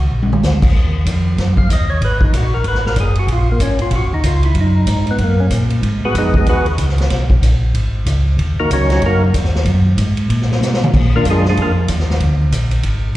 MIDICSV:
0, 0, Header, 1, 4, 480
1, 0, Start_track
1, 0, Key_signature, -6, "minor"
1, 0, Tempo, 318471
1, 1123, Time_signature, 4, 2, 24, 8
1, 19847, End_track
2, 0, Start_track
2, 0, Title_t, "Tonewheel organ"
2, 0, Program_c, 0, 16
2, 2381, Note_on_c, 0, 77, 84
2, 2558, Note_off_c, 0, 77, 0
2, 2602, Note_on_c, 0, 75, 73
2, 2860, Note_on_c, 0, 73, 81
2, 2864, Note_off_c, 0, 75, 0
2, 3037, Note_off_c, 0, 73, 0
2, 3081, Note_on_c, 0, 71, 70
2, 3343, Note_off_c, 0, 71, 0
2, 3377, Note_on_c, 0, 63, 65
2, 3535, Note_off_c, 0, 63, 0
2, 3572, Note_on_c, 0, 66, 73
2, 3828, Note_on_c, 0, 70, 84
2, 3829, Note_off_c, 0, 66, 0
2, 3999, Note_off_c, 0, 70, 0
2, 4036, Note_on_c, 0, 71, 83
2, 4300, Note_off_c, 0, 71, 0
2, 4324, Note_on_c, 0, 70, 85
2, 4487, Note_off_c, 0, 70, 0
2, 4527, Note_on_c, 0, 68, 72
2, 4785, Note_off_c, 0, 68, 0
2, 4812, Note_on_c, 0, 66, 73
2, 4970, Note_off_c, 0, 66, 0
2, 5011, Note_on_c, 0, 65, 76
2, 5266, Note_off_c, 0, 65, 0
2, 5300, Note_on_c, 0, 58, 61
2, 5454, Note_off_c, 0, 58, 0
2, 5460, Note_on_c, 0, 61, 67
2, 5730, Note_off_c, 0, 61, 0
2, 5751, Note_on_c, 0, 65, 85
2, 5919, Note_off_c, 0, 65, 0
2, 5964, Note_on_c, 0, 66, 73
2, 6222, Note_off_c, 0, 66, 0
2, 6240, Note_on_c, 0, 63, 69
2, 6403, Note_off_c, 0, 63, 0
2, 6427, Note_on_c, 0, 65, 80
2, 6693, Note_off_c, 0, 65, 0
2, 6716, Note_on_c, 0, 64, 74
2, 6881, Note_off_c, 0, 64, 0
2, 6943, Note_on_c, 0, 63, 74
2, 7627, Note_off_c, 0, 63, 0
2, 7699, Note_on_c, 0, 59, 73
2, 7852, Note_off_c, 0, 59, 0
2, 7897, Note_on_c, 0, 58, 60
2, 8141, Note_on_c, 0, 61, 81
2, 8147, Note_off_c, 0, 58, 0
2, 8247, Note_off_c, 0, 61, 0
2, 9116, Note_on_c, 0, 71, 91
2, 9119, Note_on_c, 0, 59, 74
2, 9120, Note_on_c, 0, 66, 68
2, 9124, Note_on_c, 0, 68, 69
2, 9280, Note_off_c, 0, 71, 0
2, 9281, Note_off_c, 0, 59, 0
2, 9281, Note_off_c, 0, 66, 0
2, 9284, Note_off_c, 0, 68, 0
2, 9312, Note_on_c, 0, 68, 83
2, 9316, Note_on_c, 0, 63, 62
2, 9321, Note_on_c, 0, 56, 63
2, 9322, Note_on_c, 0, 59, 63
2, 9574, Note_off_c, 0, 68, 0
2, 9576, Note_off_c, 0, 63, 0
2, 9579, Note_off_c, 0, 56, 0
2, 9579, Note_off_c, 0, 59, 0
2, 9599, Note_on_c, 0, 63, 69
2, 9600, Note_on_c, 0, 68, 83
2, 9604, Note_on_c, 0, 56, 66
2, 9604, Note_on_c, 0, 59, 68
2, 9761, Note_off_c, 0, 63, 0
2, 9761, Note_off_c, 0, 68, 0
2, 9763, Note_off_c, 0, 56, 0
2, 9763, Note_off_c, 0, 59, 0
2, 9786, Note_on_c, 0, 59, 68
2, 9787, Note_on_c, 0, 71, 81
2, 9789, Note_on_c, 0, 68, 66
2, 9792, Note_on_c, 0, 66, 70
2, 10051, Note_off_c, 0, 59, 0
2, 10052, Note_off_c, 0, 68, 0
2, 10052, Note_off_c, 0, 71, 0
2, 10054, Note_off_c, 0, 66, 0
2, 12954, Note_on_c, 0, 66, 68
2, 12955, Note_on_c, 0, 63, 68
2, 12955, Note_on_c, 0, 70, 85
2, 12958, Note_on_c, 0, 58, 69
2, 13119, Note_off_c, 0, 66, 0
2, 13120, Note_off_c, 0, 63, 0
2, 13120, Note_off_c, 0, 70, 0
2, 13121, Note_off_c, 0, 58, 0
2, 13155, Note_on_c, 0, 66, 76
2, 13161, Note_on_c, 0, 61, 61
2, 13164, Note_on_c, 0, 63, 65
2, 13165, Note_on_c, 0, 54, 64
2, 13417, Note_off_c, 0, 66, 0
2, 13420, Note_off_c, 0, 61, 0
2, 13421, Note_off_c, 0, 63, 0
2, 13422, Note_off_c, 0, 54, 0
2, 13446, Note_on_c, 0, 66, 81
2, 13447, Note_on_c, 0, 54, 69
2, 13454, Note_on_c, 0, 63, 66
2, 13464, Note_on_c, 0, 61, 68
2, 13606, Note_off_c, 0, 54, 0
2, 13606, Note_off_c, 0, 66, 0
2, 13610, Note_off_c, 0, 63, 0
2, 13615, Note_off_c, 0, 61, 0
2, 13652, Note_on_c, 0, 58, 57
2, 13653, Note_on_c, 0, 70, 74
2, 13656, Note_on_c, 0, 66, 61
2, 13658, Note_on_c, 0, 63, 60
2, 13906, Note_off_c, 0, 58, 0
2, 13907, Note_off_c, 0, 70, 0
2, 13908, Note_off_c, 0, 66, 0
2, 13910, Note_off_c, 0, 63, 0
2, 16815, Note_on_c, 0, 70, 87
2, 16818, Note_on_c, 0, 58, 69
2, 16823, Note_on_c, 0, 62, 70
2, 16830, Note_on_c, 0, 65, 69
2, 16974, Note_off_c, 0, 70, 0
2, 16975, Note_off_c, 0, 58, 0
2, 16978, Note_off_c, 0, 62, 0
2, 16981, Note_off_c, 0, 65, 0
2, 17032, Note_on_c, 0, 68, 81
2, 17039, Note_on_c, 0, 62, 65
2, 17041, Note_on_c, 0, 56, 64
2, 17049, Note_on_c, 0, 65, 66
2, 17279, Note_off_c, 0, 68, 0
2, 17283, Note_off_c, 0, 62, 0
2, 17284, Note_off_c, 0, 56, 0
2, 17288, Note_off_c, 0, 65, 0
2, 17322, Note_on_c, 0, 68, 89
2, 17326, Note_on_c, 0, 56, 75
2, 17326, Note_on_c, 0, 65, 74
2, 17328, Note_on_c, 0, 62, 77
2, 17468, Note_off_c, 0, 68, 0
2, 17470, Note_off_c, 0, 56, 0
2, 17470, Note_off_c, 0, 65, 0
2, 17471, Note_off_c, 0, 62, 0
2, 17513, Note_on_c, 0, 70, 72
2, 17514, Note_on_c, 0, 65, 64
2, 17517, Note_on_c, 0, 58, 62
2, 17523, Note_on_c, 0, 62, 63
2, 17666, Note_off_c, 0, 70, 0
2, 17667, Note_off_c, 0, 65, 0
2, 17669, Note_off_c, 0, 58, 0
2, 17673, Note_off_c, 0, 62, 0
2, 19847, End_track
3, 0, Start_track
3, 0, Title_t, "Tonewheel organ"
3, 0, Program_c, 1, 16
3, 0, Note_on_c, 1, 37, 77
3, 154, Note_off_c, 1, 37, 0
3, 172, Note_on_c, 1, 34, 66
3, 633, Note_off_c, 1, 34, 0
3, 642, Note_on_c, 1, 38, 75
3, 1107, Note_off_c, 1, 38, 0
3, 1122, Note_on_c, 1, 39, 74
3, 1587, Note_off_c, 1, 39, 0
3, 1593, Note_on_c, 1, 41, 75
3, 2062, Note_off_c, 1, 41, 0
3, 2078, Note_on_c, 1, 42, 67
3, 2543, Note_off_c, 1, 42, 0
3, 2556, Note_on_c, 1, 39, 77
3, 3022, Note_off_c, 1, 39, 0
3, 3033, Note_on_c, 1, 32, 76
3, 3499, Note_off_c, 1, 32, 0
3, 3517, Note_on_c, 1, 34, 73
3, 3981, Note_off_c, 1, 34, 0
3, 3983, Note_on_c, 1, 32, 75
3, 4453, Note_off_c, 1, 32, 0
3, 4461, Note_on_c, 1, 30, 83
3, 4932, Note_off_c, 1, 30, 0
3, 4937, Note_on_c, 1, 34, 80
3, 5409, Note_off_c, 1, 34, 0
3, 5418, Note_on_c, 1, 32, 80
3, 5889, Note_off_c, 1, 32, 0
3, 5893, Note_on_c, 1, 34, 74
3, 6052, Note_on_c, 1, 30, 51
3, 6057, Note_off_c, 1, 34, 0
3, 6219, Note_on_c, 1, 39, 60
3, 6221, Note_off_c, 1, 30, 0
3, 6372, Note_off_c, 1, 39, 0
3, 6374, Note_on_c, 1, 37, 87
3, 6846, Note_off_c, 1, 37, 0
3, 6855, Note_on_c, 1, 42, 82
3, 7327, Note_off_c, 1, 42, 0
3, 7338, Note_on_c, 1, 44, 76
3, 7808, Note_off_c, 1, 44, 0
3, 7818, Note_on_c, 1, 42, 67
3, 8288, Note_off_c, 1, 42, 0
3, 8298, Note_on_c, 1, 46, 78
3, 8768, Note_off_c, 1, 46, 0
3, 8777, Note_on_c, 1, 44, 76
3, 9054, Note_off_c, 1, 44, 0
3, 9074, Note_on_c, 1, 44, 36
3, 9169, Note_off_c, 1, 44, 0
3, 9258, Note_on_c, 1, 41, 75
3, 9727, Note_off_c, 1, 41, 0
3, 9742, Note_on_c, 1, 39, 74
3, 10210, Note_off_c, 1, 39, 0
3, 10222, Note_on_c, 1, 37, 83
3, 10690, Note_off_c, 1, 37, 0
3, 10696, Note_on_c, 1, 35, 81
3, 11167, Note_off_c, 1, 35, 0
3, 11186, Note_on_c, 1, 34, 78
3, 11652, Note_off_c, 1, 34, 0
3, 11670, Note_on_c, 1, 32, 70
3, 12134, Note_off_c, 1, 32, 0
3, 12149, Note_on_c, 1, 37, 87
3, 12614, Note_off_c, 1, 37, 0
3, 12635, Note_on_c, 1, 39, 84
3, 12886, Note_off_c, 1, 39, 0
3, 12905, Note_on_c, 1, 39, 37
3, 13002, Note_off_c, 1, 39, 0
3, 13113, Note_on_c, 1, 37, 82
3, 13577, Note_off_c, 1, 37, 0
3, 13596, Note_on_c, 1, 42, 76
3, 14059, Note_off_c, 1, 42, 0
3, 14076, Note_on_c, 1, 39, 84
3, 14539, Note_off_c, 1, 39, 0
3, 14545, Note_on_c, 1, 42, 89
3, 15014, Note_off_c, 1, 42, 0
3, 15031, Note_on_c, 1, 44, 79
3, 15497, Note_off_c, 1, 44, 0
3, 15519, Note_on_c, 1, 46, 76
3, 15982, Note_off_c, 1, 46, 0
3, 15990, Note_on_c, 1, 47, 87
3, 16458, Note_off_c, 1, 47, 0
3, 16486, Note_on_c, 1, 46, 83
3, 16947, Note_off_c, 1, 46, 0
3, 16957, Note_on_c, 1, 42, 81
3, 17422, Note_off_c, 1, 42, 0
3, 17433, Note_on_c, 1, 41, 75
3, 17901, Note_off_c, 1, 41, 0
3, 17922, Note_on_c, 1, 39, 85
3, 18386, Note_off_c, 1, 39, 0
3, 18397, Note_on_c, 1, 38, 84
3, 18864, Note_off_c, 1, 38, 0
3, 18873, Note_on_c, 1, 34, 82
3, 19343, Note_off_c, 1, 34, 0
3, 19349, Note_on_c, 1, 32, 73
3, 19821, Note_off_c, 1, 32, 0
3, 19847, End_track
4, 0, Start_track
4, 0, Title_t, "Drums"
4, 336, Note_on_c, 9, 48, 48
4, 487, Note_off_c, 9, 48, 0
4, 491, Note_on_c, 9, 47, 63
4, 641, Note_off_c, 9, 47, 0
4, 649, Note_on_c, 9, 44, 52
4, 652, Note_on_c, 9, 38, 48
4, 799, Note_off_c, 9, 44, 0
4, 802, Note_off_c, 9, 38, 0
4, 941, Note_on_c, 9, 36, 69
4, 949, Note_on_c, 9, 49, 65
4, 1091, Note_off_c, 9, 36, 0
4, 1099, Note_off_c, 9, 49, 0
4, 1125, Note_on_c, 9, 36, 21
4, 1276, Note_off_c, 9, 36, 0
4, 1601, Note_on_c, 9, 36, 19
4, 1603, Note_on_c, 9, 44, 47
4, 1603, Note_on_c, 9, 51, 60
4, 1752, Note_off_c, 9, 36, 0
4, 1753, Note_off_c, 9, 44, 0
4, 1753, Note_off_c, 9, 51, 0
4, 2079, Note_on_c, 9, 36, 16
4, 2082, Note_on_c, 9, 51, 46
4, 2085, Note_on_c, 9, 38, 32
4, 2229, Note_off_c, 9, 36, 0
4, 2233, Note_off_c, 9, 51, 0
4, 2236, Note_off_c, 9, 38, 0
4, 2370, Note_on_c, 9, 36, 45
4, 2520, Note_off_c, 9, 36, 0
4, 2558, Note_on_c, 9, 36, 20
4, 2562, Note_on_c, 9, 44, 55
4, 2562, Note_on_c, 9, 51, 60
4, 2708, Note_off_c, 9, 36, 0
4, 2713, Note_off_c, 9, 44, 0
4, 2713, Note_off_c, 9, 51, 0
4, 3036, Note_on_c, 9, 36, 21
4, 3037, Note_on_c, 9, 51, 52
4, 3187, Note_off_c, 9, 36, 0
4, 3188, Note_off_c, 9, 51, 0
4, 3325, Note_on_c, 9, 36, 58
4, 3476, Note_off_c, 9, 36, 0
4, 3511, Note_on_c, 9, 36, 21
4, 3518, Note_on_c, 9, 44, 52
4, 3518, Note_on_c, 9, 51, 65
4, 3662, Note_off_c, 9, 36, 0
4, 3669, Note_off_c, 9, 44, 0
4, 3669, Note_off_c, 9, 51, 0
4, 3980, Note_on_c, 9, 51, 47
4, 3986, Note_on_c, 9, 36, 18
4, 4131, Note_off_c, 9, 51, 0
4, 4136, Note_off_c, 9, 36, 0
4, 4139, Note_on_c, 9, 38, 26
4, 4289, Note_off_c, 9, 38, 0
4, 4312, Note_on_c, 9, 38, 38
4, 4460, Note_on_c, 9, 44, 49
4, 4460, Note_on_c, 9, 51, 59
4, 4463, Note_off_c, 9, 38, 0
4, 4464, Note_on_c, 9, 36, 25
4, 4611, Note_off_c, 9, 44, 0
4, 4611, Note_off_c, 9, 51, 0
4, 4615, Note_off_c, 9, 36, 0
4, 4753, Note_on_c, 9, 51, 41
4, 4904, Note_off_c, 9, 51, 0
4, 4943, Note_on_c, 9, 36, 18
4, 4947, Note_on_c, 9, 51, 54
4, 5093, Note_off_c, 9, 36, 0
4, 5098, Note_off_c, 9, 51, 0
4, 5422, Note_on_c, 9, 36, 22
4, 5424, Note_on_c, 9, 44, 59
4, 5424, Note_on_c, 9, 51, 60
4, 5573, Note_off_c, 9, 36, 0
4, 5575, Note_off_c, 9, 44, 0
4, 5575, Note_off_c, 9, 51, 0
4, 5707, Note_on_c, 9, 51, 40
4, 5858, Note_off_c, 9, 51, 0
4, 5889, Note_on_c, 9, 51, 54
4, 5897, Note_on_c, 9, 36, 20
4, 6040, Note_off_c, 9, 51, 0
4, 6048, Note_off_c, 9, 36, 0
4, 6379, Note_on_c, 9, 36, 19
4, 6383, Note_on_c, 9, 44, 51
4, 6383, Note_on_c, 9, 51, 65
4, 6530, Note_off_c, 9, 36, 0
4, 6533, Note_off_c, 9, 44, 0
4, 6533, Note_off_c, 9, 51, 0
4, 6674, Note_on_c, 9, 51, 42
4, 6824, Note_off_c, 9, 51, 0
4, 6852, Note_on_c, 9, 51, 49
4, 6858, Note_on_c, 9, 36, 19
4, 7003, Note_off_c, 9, 51, 0
4, 7009, Note_off_c, 9, 36, 0
4, 7336, Note_on_c, 9, 44, 55
4, 7336, Note_on_c, 9, 51, 69
4, 7339, Note_on_c, 9, 36, 21
4, 7487, Note_off_c, 9, 44, 0
4, 7487, Note_off_c, 9, 51, 0
4, 7489, Note_off_c, 9, 36, 0
4, 7637, Note_on_c, 9, 51, 39
4, 7788, Note_off_c, 9, 51, 0
4, 7813, Note_on_c, 9, 51, 52
4, 7818, Note_on_c, 9, 36, 18
4, 7964, Note_off_c, 9, 51, 0
4, 7969, Note_off_c, 9, 36, 0
4, 8297, Note_on_c, 9, 44, 54
4, 8297, Note_on_c, 9, 51, 64
4, 8300, Note_on_c, 9, 36, 24
4, 8448, Note_off_c, 9, 44, 0
4, 8448, Note_off_c, 9, 51, 0
4, 8450, Note_off_c, 9, 36, 0
4, 8596, Note_on_c, 9, 51, 42
4, 8746, Note_off_c, 9, 51, 0
4, 8782, Note_on_c, 9, 36, 22
4, 8787, Note_on_c, 9, 51, 51
4, 8933, Note_off_c, 9, 36, 0
4, 8938, Note_off_c, 9, 51, 0
4, 9262, Note_on_c, 9, 36, 24
4, 9267, Note_on_c, 9, 44, 48
4, 9267, Note_on_c, 9, 51, 65
4, 9413, Note_off_c, 9, 36, 0
4, 9418, Note_off_c, 9, 44, 0
4, 9418, Note_off_c, 9, 51, 0
4, 9554, Note_on_c, 9, 36, 55
4, 9705, Note_off_c, 9, 36, 0
4, 9740, Note_on_c, 9, 36, 21
4, 9743, Note_on_c, 9, 51, 52
4, 9891, Note_off_c, 9, 36, 0
4, 9893, Note_off_c, 9, 51, 0
4, 10035, Note_on_c, 9, 51, 38
4, 10186, Note_off_c, 9, 51, 0
4, 10217, Note_on_c, 9, 44, 55
4, 10217, Note_on_c, 9, 51, 63
4, 10222, Note_on_c, 9, 36, 17
4, 10368, Note_off_c, 9, 44, 0
4, 10368, Note_off_c, 9, 51, 0
4, 10373, Note_off_c, 9, 36, 0
4, 10384, Note_on_c, 9, 38, 26
4, 10519, Note_on_c, 9, 51, 43
4, 10535, Note_off_c, 9, 38, 0
4, 10555, Note_on_c, 9, 38, 41
4, 10670, Note_off_c, 9, 51, 0
4, 10703, Note_on_c, 9, 51, 56
4, 10705, Note_off_c, 9, 38, 0
4, 10705, Note_on_c, 9, 36, 15
4, 10706, Note_on_c, 9, 38, 34
4, 10854, Note_off_c, 9, 51, 0
4, 10856, Note_off_c, 9, 36, 0
4, 10857, Note_off_c, 9, 38, 0
4, 10999, Note_on_c, 9, 36, 53
4, 11150, Note_off_c, 9, 36, 0
4, 11190, Note_on_c, 9, 36, 19
4, 11194, Note_on_c, 9, 44, 49
4, 11194, Note_on_c, 9, 51, 60
4, 11340, Note_off_c, 9, 36, 0
4, 11345, Note_off_c, 9, 44, 0
4, 11345, Note_off_c, 9, 51, 0
4, 11672, Note_on_c, 9, 36, 23
4, 11674, Note_on_c, 9, 51, 53
4, 11822, Note_off_c, 9, 36, 0
4, 11825, Note_off_c, 9, 51, 0
4, 12152, Note_on_c, 9, 36, 22
4, 12153, Note_on_c, 9, 44, 54
4, 12153, Note_on_c, 9, 51, 60
4, 12303, Note_off_c, 9, 36, 0
4, 12304, Note_off_c, 9, 44, 0
4, 12304, Note_off_c, 9, 51, 0
4, 12635, Note_on_c, 9, 36, 20
4, 12641, Note_on_c, 9, 51, 47
4, 12786, Note_off_c, 9, 36, 0
4, 12791, Note_off_c, 9, 51, 0
4, 13117, Note_on_c, 9, 36, 20
4, 13121, Note_on_c, 9, 44, 51
4, 13121, Note_on_c, 9, 51, 68
4, 13268, Note_off_c, 9, 36, 0
4, 13272, Note_off_c, 9, 44, 0
4, 13272, Note_off_c, 9, 51, 0
4, 13411, Note_on_c, 9, 51, 43
4, 13414, Note_on_c, 9, 38, 31
4, 13562, Note_off_c, 9, 51, 0
4, 13565, Note_off_c, 9, 38, 0
4, 13590, Note_on_c, 9, 51, 48
4, 13597, Note_on_c, 9, 36, 22
4, 13740, Note_off_c, 9, 51, 0
4, 13747, Note_off_c, 9, 36, 0
4, 14077, Note_on_c, 9, 44, 60
4, 14077, Note_on_c, 9, 51, 70
4, 14078, Note_on_c, 9, 36, 26
4, 14228, Note_off_c, 9, 44, 0
4, 14228, Note_off_c, 9, 51, 0
4, 14229, Note_off_c, 9, 36, 0
4, 14234, Note_on_c, 9, 38, 28
4, 14384, Note_off_c, 9, 38, 0
4, 14400, Note_on_c, 9, 38, 43
4, 14551, Note_off_c, 9, 38, 0
4, 14552, Note_on_c, 9, 51, 54
4, 14555, Note_on_c, 9, 36, 20
4, 14703, Note_off_c, 9, 51, 0
4, 14706, Note_off_c, 9, 36, 0
4, 15038, Note_on_c, 9, 36, 21
4, 15038, Note_on_c, 9, 44, 51
4, 15038, Note_on_c, 9, 51, 70
4, 15188, Note_off_c, 9, 36, 0
4, 15189, Note_off_c, 9, 44, 0
4, 15189, Note_off_c, 9, 51, 0
4, 15329, Note_on_c, 9, 51, 41
4, 15479, Note_off_c, 9, 51, 0
4, 15521, Note_on_c, 9, 36, 17
4, 15522, Note_on_c, 9, 51, 59
4, 15672, Note_off_c, 9, 36, 0
4, 15673, Note_off_c, 9, 51, 0
4, 15696, Note_on_c, 9, 38, 26
4, 15846, Note_off_c, 9, 38, 0
4, 15848, Note_on_c, 9, 38, 37
4, 15998, Note_off_c, 9, 38, 0
4, 16012, Note_on_c, 9, 44, 54
4, 16015, Note_on_c, 9, 38, 45
4, 16163, Note_off_c, 9, 44, 0
4, 16166, Note_off_c, 9, 38, 0
4, 16181, Note_on_c, 9, 38, 57
4, 16332, Note_off_c, 9, 38, 0
4, 16332, Note_on_c, 9, 47, 82
4, 16482, Note_on_c, 9, 36, 64
4, 16483, Note_off_c, 9, 47, 0
4, 16484, Note_on_c, 9, 49, 69
4, 16633, Note_off_c, 9, 36, 0
4, 16634, Note_off_c, 9, 49, 0
4, 16957, Note_on_c, 9, 44, 54
4, 16957, Note_on_c, 9, 51, 65
4, 16962, Note_on_c, 9, 36, 23
4, 17108, Note_off_c, 9, 44, 0
4, 17108, Note_off_c, 9, 51, 0
4, 17113, Note_off_c, 9, 36, 0
4, 17260, Note_on_c, 9, 38, 37
4, 17411, Note_off_c, 9, 38, 0
4, 17441, Note_on_c, 9, 36, 16
4, 17441, Note_on_c, 9, 51, 53
4, 17591, Note_off_c, 9, 36, 0
4, 17592, Note_off_c, 9, 51, 0
4, 17908, Note_on_c, 9, 44, 57
4, 17908, Note_on_c, 9, 51, 70
4, 17916, Note_on_c, 9, 36, 22
4, 18059, Note_off_c, 9, 44, 0
4, 18059, Note_off_c, 9, 51, 0
4, 18067, Note_off_c, 9, 36, 0
4, 18078, Note_on_c, 9, 38, 29
4, 18229, Note_off_c, 9, 38, 0
4, 18239, Note_on_c, 9, 38, 43
4, 18390, Note_off_c, 9, 38, 0
4, 18392, Note_on_c, 9, 51, 53
4, 18396, Note_on_c, 9, 36, 22
4, 18543, Note_off_c, 9, 51, 0
4, 18547, Note_off_c, 9, 36, 0
4, 18874, Note_on_c, 9, 36, 22
4, 18874, Note_on_c, 9, 44, 61
4, 18874, Note_on_c, 9, 51, 67
4, 19025, Note_off_c, 9, 36, 0
4, 19025, Note_off_c, 9, 44, 0
4, 19025, Note_off_c, 9, 51, 0
4, 19157, Note_on_c, 9, 51, 43
4, 19308, Note_off_c, 9, 51, 0
4, 19340, Note_on_c, 9, 51, 55
4, 19349, Note_on_c, 9, 36, 22
4, 19491, Note_off_c, 9, 51, 0
4, 19500, Note_off_c, 9, 36, 0
4, 19847, End_track
0, 0, End_of_file